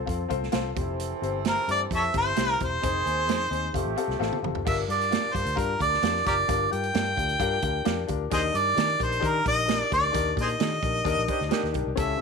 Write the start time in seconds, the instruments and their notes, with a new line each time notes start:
Already playing: horn section F3 C4 A4
0.05 fingered electric bass F2, grand piano C4 F4 A4 C5, kick, closed hi-hat
0.28 fingered electric bass C2, grand piano C4 F4 A4 C5, kick, closed hi-hat
0.43 snare
0.52 fingered electric bass C2, grand piano C4 F4 A4 C5, snare, closed hi-hat
0.75 fingered electric bass F1, horn section E3 C4 A4, grand piano C4 D4 G4 C5, kick, closed hi-hat
0.81 grand piano E4
1.00 closed hi-hat
1.21 fingered electric bass G1, grand piano C4 E4 G4 C5, closed hi-hat
1.45 grand piano C4 E4 G4 C5, harmonica A#4, snare, closed hi-hat
1.67 fingered electric bass G2, grand piano C4 E4 G4 C5, harmonica D5, closed hi-hat
1.90 fingered electric bass F2, grand piano C4 E4 G4 C5, kick, closed hi-hat
1.95 harmonica A4 C#5 E5
2.13 fingered electric bass G1, grand piano C4 E4 G4 C5, kick, closed hi-hat
2.18 harmonica C5
2.35 fingered electric bass C2, grand piano C4 E4 G4 C5, snare, closed hi-hat
2.50 snare
2.59 fingered electric bass E1, grand piano C4 E4 G4 C5, kick, closed hi-hat
2.65 harmonica C5
2.81 fingered electric bass F1, horn section D#3 C4 G#4, grand piano C4 D#4 G#4 C5, kick, closed hi-hat
3.05 fingered electric bass D#2, grand piano C4 D#4 G#4 C5, closed hi-hat
3.26 fingered electric bass F2, grand piano C4 D#4 G#4 C5, snare, closed hi-hat
3.41 closed hi-hat
3.50 fingered electric bass D#2, grand piano C4 D#4 G#4 C5, closed hi-hat
3.73 fingered electric bass F1, horn section C3 A3 G4, grand piano C4 F4 G4 A4, kick, closed hi-hat
3.85 fingered electric bass A1
3.96 grand piano C4 F4 G4 A4, closed hi-hat
4.08 fingered electric bass C2, snare
4.19 fingered electric bass A1, grand piano C4 F4 G4 A4, snare
4.33 high tom
4.42 fingered electric bass F#1, grand piano C4 F4 G4 A4, mid tom
4.55 floor tom
4.65 fingered electric bass G1, grand piano G2 D4 F4 G4 A#4, harmonica E5, kick, crash
4.88 fingered electric bass G2, grand piano D4 F4 G4 A#4, harmonica D5, closed hi-hat
5.01 closed hi-hat
5.10 grand piano D4 F4 G4 A#4, snare, closed hi-hat
5.33 fingered electric bass G2, grand piano D4 F4 G4 A#4, harmonica C5, kick, closed hi-hat
5.45 fingered electric bass D2, closed hi-hat
5.55 fingered electric bass G2, grand piano D4 F4 G4 A#4, harmonica A#4, kick, closed hi-hat
5.79 fingered electric bass D2, grand piano D4 F4 G4 A#4, harmonica D5, kick, closed hi-hat
5.94 snare
6.02 fingered electric bass F2, grand piano D4 F4 G4 A#4, snare, closed hi-hat
6.16 snare
6.25 fingered electric bass F#1, grand piano D4 F4 G4 A#4, harmonica G4 A#4 D5, kick, closed hi-hat
6.48 fingered electric bass G1, grand piano G2 D4 F4 G4 A#4, kick, closed hi-hat
6.70 fingered electric bass G2, grand piano D4 F4 G4 A#4, harmonica G5, closed hi-hat
6.83 closed hi-hat
6.94 fingered electric bass G2, grand piano D4 F4 G4 A#4, snare, closed hi-hat
7.16 fingered electric bass D2, grand piano D4 F4 G4 A#4, kick, closed hi-hat
7.29 closed hi-hat
7.39 fingered electric bass G2, grand piano D4 F4 G4 A#4, kick, closed hi-hat
7.62 fingered electric bass D2, grand piano D4 F4 G4 A#4 G5, kick, closed hi-hat
7.85 fingered electric bass F2, grand piano D4 F4 G4 A#4 D6, snare, closed hi-hat
8.07 fingered electric bass D2, grand piano D4 F4 G4 A#4, kick, closed hi-hat
8.30 fingered electric bass D#2, grand piano D#3 D4 D#4 G4 A#4, harmonica G#4 C5 D#5, kick, closed hi-hat
8.52 fingered electric bass G2, grand piano D4 D#4 G4 A#4, closed hi-hat
8.57 harmonica D5
8.75 fingered electric bass D#3, grand piano D4 D#4 G4 A#4, snare, closed hi-hat
8.98 fingered electric bass A#1, grand piano D4 D#4 G4 A#4, kick, closed hi-hat
9.03 harmonica C5
9.12 closed hi-hat
9.20 fingered electric bass D#3, grand piano D4 D#4 G4 A#4, kick, closed hi-hat
9.27 harmonica A#4
9.43 fingered electric bass A#1, grand piano D4 D#4 G4 A#4, kick, closed hi-hat
9.47 harmonica D#5
9.66 grand piano D4 D#4 G4 A#4, snare, closed hi-hat
9.90 fingered electric bass D2, grand piano D4 D#4 G4 A#4, harmonica D5, kick, closed hi-hat
10.12 fingered electric bass D#2, grand piano D#3 D4 D#4 G4 A#4, kick, closed hi-hat
10.36 fingered electric bass A#2, grand piano D4 D#4 G4 A#4, kick, closed hi-hat
10.41 harmonica G#4 C5 D#5
10.49 closed hi-hat
10.59 fingered electric bass D#3, grand piano D4 D#4 G4 A4, snare, closed hi-hat
10.82 fingered electric bass A#1, grand piano D4 D#4 G4 A#4, kick, closed hi-hat
11.04 fingered electric bass D#2, grand piano D4 D#4 G4 A#4, kick, closed hi-hat
11.18 fingered electric bass A#1
11.27 horn section D#3 D4 G4, grand piano D4 D#4 G4 C5, kick, closed hi-hat
11.41 fingered electric bass D2, snare
11.49 horn section D#3 D4 G4, grand piano D4 D#4 G4 A#4, snare, closed hi-hat
11.63 fingered electric bass D#2, snare
11.72 fingered electric bass B1, grand piano D4 D#4 G4 A#4, kick, closed hi-hat
11.87 fingered electric bass C2
11.96 fingered electric bass C#2, grand piano C#3 C#4 E4 G4 A4, harmonica E5, kick, closed hi-hat
12.17 grand piano C#4 E4